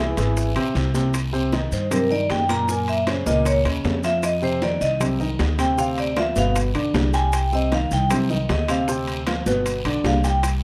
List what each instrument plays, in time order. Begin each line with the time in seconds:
Already playing: upright bass C2, baritone saxophone E2, vibraphone E5
0.00 grand piano E3 E4 G#4
0.17 upright bass G#1, grand piano E3 E4 G#4, high bongo, high timbale, short guiro, maracas
0.37 high bongo, high conga, long guiro, maracas
0.56 upright bass A#1, grand piano C3 C4 C5, high bongo, high conga, high timbale, claves, maracas
0.75 upright bass C2, high bongo, low bongo, high conga, short guiro, maracas
0.94 grand piano C3 C4 C5, high conga, short guiro, maracas
1.14 high bongo, high conga, high timbale, long guiro, claves, maracas
1.33 grand piano C3 C4 C5, maracas
1.52 grand piano D#3 D#4 D#5, high bongo, high conga, high timbale, low timbale, short guiro, maracas
1.72 upright bass G2, vibraphone C5, high conga, short guiro, maracas
1.91 grand piano C3 C4 C5, vibraphone A#4, high bongo, high conga, low conga, high timbale, long guiro, claves, maracas
2.10 grand piano D#3 D#4 D#5, vibraphone D5, high conga, low conga, maracas
2.30 upright bass F#2, vibraphone G5, high bongo, low bongo, high conga, high timbale, low timbale, short guiro, maracas
2.49 grand piano A#2 A#3 A#4, vibraphone A#5, high conga, high timbale, short guiro, claves, maracas
2.69 grand piano A#2 A#3 A#4, vibraphone G#5, high bongo, long guiro, maracas
2.88 vibraphone E5, high conga, high timbale, maracas
3.07 grand piano C#3 C#4 C#5, vibraphone C5, high bongo, high conga, high timbale, low timbale, short guiro, claves, maracas
3.26 upright bass C#2, grand piano A#2 A#3 A#4, vibraphone D#5, high bongo, high conga, short guiro, maracas
3.45 vibraphone C#5, high bongo, high conga, high timbale, long guiro, maracas
3.65 upright bass D#2, grand piano C#3 C#4 C#5, high bongo, high conga, high timbale, claves, maracas
3.84 upright bass F2, high bongo, low bongo, high conga, low timbale, short guiro, maracas
4.03 grand piano F3 F4 F5, vibraphone E5, high bongo, high conga, high timbale, short guiro, maracas
4.23 vibraphone D#5, high bongo, high conga, high timbale, long guiro, claves, maracas
4.42 grand piano C3 C4 C5, vibraphone C5, high conga, maracas
4.61 grand piano D#3 D#4 D#5, vibraphone D5, high bongo, high conga, high timbale, low timbale, short guiro, maracas
4.81 upright bass C2, vibraphone D#5, high conga, short guiro, maracas
5.00 grand piano C3 C4 C5, high bongo, high conga, low conga, high timbale, long guiro, claves, maracas
5.20 grand piano D#3 D#4 D#5, high conga, low conga, maracas
5.39 upright bass D2, high bongo, low bongo, high conga, high timbale, low timbale, short guiro, maracas
5.58 grand piano C3 C4 C5, vibraphone G5, high conga, high timbale, short guiro, claves, maracas
5.78 grand piano C3 C4 C5, vibraphone F5, high bongo, long guiro, maracas
5.97 vibraphone D5, high conga, high timbale, maracas
6.16 grand piano F3 F4 F5, vibraphone E5, high bongo, high conga, high timbale, low timbale, short guiro, claves, maracas
6.36 upright bass G1, grand piano B2 B3 B4, vibraphone F5, high bongo, high conga, short guiro, maracas
6.55 high bongo, high conga, high timbale, long guiro, maracas
6.75 upright bass B1, grand piano D3 D4 D5, high bongo, high conga, high timbale, claves, maracas
6.94 upright bass C2, high bongo, low bongo, high conga, low timbale, short guiro, maracas
7.13 grand piano G3 G4 G5, vibraphone G#5, high bongo, high timbale, short guiro, maracas
7.33 vibraphone G5, high bongo, high conga, high timbale, long guiro, claves, maracas
7.52 grand piano C3 C4 C5, vibraphone D#5, high conga, maracas
7.72 grand piano D#3 D#4 D#5, vibraphone F5, high bongo, high conga, high timbale, low timbale, short guiro, maracas
7.91 upright bass C2, vibraphone G5, high conga, short guiro, maracas
8.10 grand piano C3 C4 C5, high bongo, high conga, low conga, high timbale, long guiro, claves, maracas
8.30 grand piano D#3 D#4 D#5, high conga, low conga, maracas
8.49 upright bass D2, vibraphone D#5, high bongo, low bongo, high conga, high timbale, low timbale, short guiro, maracas
8.68 grand piano C3 C4 C5, vibraphone F5, high conga, high timbale, short guiro, claves, maracas
8.88 grand piano C3 C4 C5, high bongo, high conga, long guiro, maracas
9.07 high conga, high timbale, maracas
9.27 grand piano F3 F4 F5, high bongo, high conga, high timbale, low timbale, short guiro, claves, maracas
9.46 upright bass G1, grand piano B2 B3 B4, high bongo, high conga, short guiro, maracas
9.66 high bongo, high conga, high timbale, long guiro, maracas
9.85 upright bass B1, grand piano D3 D4 D5, high bongo, high conga, high timbale, claves, maracas
10.04 upright bass C2, vibraphone F5, high bongo, low bongo, high conga, low timbale, short guiro, maracas
10.24 grand piano G3 G4 G5, vibraphone G5, high bongo, high conga, high timbale, short guiro, maracas
10.43 high bongo, high conga, high timbale, long guiro, claves, maracas